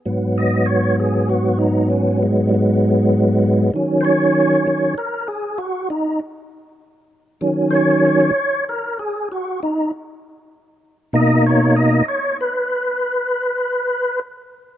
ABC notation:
X:1
M:12/8
L:1/8
Q:3/8=65
K:Ebm
V:1 name="Tonewheel organ"
z e d A G E D A, [=G,A,]4 | z [=cd]3 B A G E z4 | z [=cd]3 B A G E z4 | ^d _d ^d _d =B6 z2 |]
V:2 name="Tonewheel organ" clef=bass
[A,,G,C]12 | [E,G,D]3 [E,G,D] z8 | [E,G,D]3 z8 z | [=B,,^A,^D]3 z8 z |]